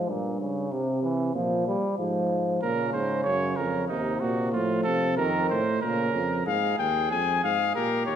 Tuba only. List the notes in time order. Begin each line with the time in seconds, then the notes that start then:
0.07 G2
0.71 C3
1.35 A#2
1.99 G#2
2.62 A#2
2.94 G#2
3.26 F#2
3.58 F2
3.90 D#2
4.22 A#2
4.54 A2
4.86 C3
5.19 F2
5.51 A2
5.83 A#2
6.15 F2
6.47 G#2
6.79 D#2
7.11 F2
7.44 G#2
7.76 A#2
8.08 D#2